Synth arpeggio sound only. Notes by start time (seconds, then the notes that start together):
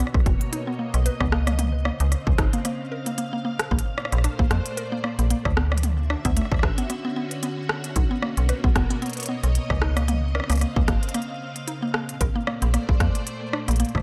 0.53 D#4
0.67 B3
0.79 A#3
1.06 B4
1.21 B3
1.32 A#3
1.47 A#3
1.59 A#3
1.85 A#3
2.38 D#4
2.53 A#3
2.65 A#3
2.92 A#4
3.06 A#3
3.18 A#3
3.33 A#3
3.45 A#3
3.71 A#3
4.24 D4
4.39 A#3
4.51 A#3
4.77 A#4
4.92 A#3
5.04 A#3
5.19 A#3
5.30 A#3
5.57 B3
6.10 D4
6.25 B3
6.37 A3
6.63 B4
6.78 B3
6.90 B3
7.05 B3
7.16 B3
7.43 B3
7.96 D#4
8.11 B3
8.22 A#3
8.49 B4
8.64 B3
8.76 B3
8.90 B3
9.02 B3
9.29 B3
9.82 D#4
9.97 A#3
10.08 A#3
10.35 A#4
10.50 A#3
10.61 A#3
10.76 A#3
10.88 A#3
11.14 A#3
11.68 D#4
11.82 A#3
11.94 A#3
12.21 A#4
12.36 A#3
12.47 A#3
12.62 A#3
12.74 A#3
13.00 A#3
13.53 D4
13.68 A#3
13.80 A#3